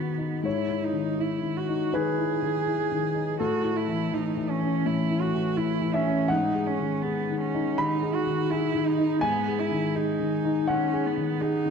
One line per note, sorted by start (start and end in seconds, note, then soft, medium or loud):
0.00 0.48 D#3 soft
0.00 0.44 B3 soft
0.00 0.18 D#4 soft
0.00 0.48 F#4 soft
0.18 0.44 D#4 soft
0.43 1.89 G#2 soft
0.43 0.85 E4 soft
0.43 1.90 C#5 medium
0.68 1.09 E4 soft
0.84 1.22 D#4 soft
0.93 1.34 D#3 soft
1.18 1.59 E4 soft
1.18 1.58 E4 soft
1.43 1.83 D#3 soft
1.57 1.96 F#4 soft
1.69 2.08 D#4 soft
1.93 2.33 D#3 soft
1.93 3.40 G#4 medium
1.93 3.35 B4 medium
2.18 2.57 E4 soft
2.42 2.81 D#3 soft
2.67 3.06 E4 soft
2.92 3.30 D#3 soft
3.15 3.39 D#4 soft
3.40 4.81 A2 soft
3.40 3.78 F#4 medium
3.40 5.89 A4 medium
3.63 4.02 E4 soft
3.77 4.15 E4 medium
3.88 4.11 E3 soft
4.12 4.36 E3 soft
4.12 4.51 D#4 soft
4.37 4.75 E3 soft
4.49 4.87 C#4 soft
4.62 5.00 C#4 soft
4.86 6.26 A2 soft
4.86 5.22 E4 medium
5.10 5.48 E4 soft
5.21 5.58 F#4 medium
5.35 5.72 E3 soft
5.57 5.96 E4 medium
5.57 5.96 E4 soft
5.81 6.20 E3 soft
5.94 6.31 C#4 medium
5.94 6.27 E5 medium
6.06 6.30 C#4 soft
6.28 7.76 G#2 soft
6.28 6.68 D#4 medium
6.28 7.74 F#5 medium
6.55 6.94 G#4 soft
6.66 7.03 C#4 medium
6.79 7.19 D#3 soft
7.02 7.40 B3 medium
7.02 7.44 G#4 soft
7.30 7.70 D#3 soft
7.40 7.81 C#4 medium
7.54 7.94 D#4 soft
7.78 8.18 D#3 soft
7.78 8.16 D#4 medium
7.78 9.19 B5 medium
8.02 8.41 G#4 soft
8.15 8.51 F#4 medium
8.26 8.65 D#3 soft
8.50 8.88 E4 medium
8.50 8.89 G#4 soft
8.75 9.13 D#3 soft
8.87 9.22 D#4 medium
8.98 9.37 D#4 soft
9.21 10.65 G#2 medium
9.21 9.60 B3 medium
9.21 10.65 G#5 medium
9.48 9.87 G#4 soft
9.59 9.97 E4 medium
9.71 10.11 D#3 soft
9.95 10.70 D#4 medium
9.95 10.35 G#4 soft
10.20 10.59 D#3 soft
10.45 10.84 D#4 soft
10.67 11.08 D#3 soft
10.67 11.08 C#4 medium
10.67 11.70 F#5 medium
10.93 11.32 G#4 soft
11.06 11.42 B3 medium
11.17 11.56 D#3 soft
11.40 11.70 D#4 medium
11.40 11.70 G#4 soft
11.66 11.70 D#3 soft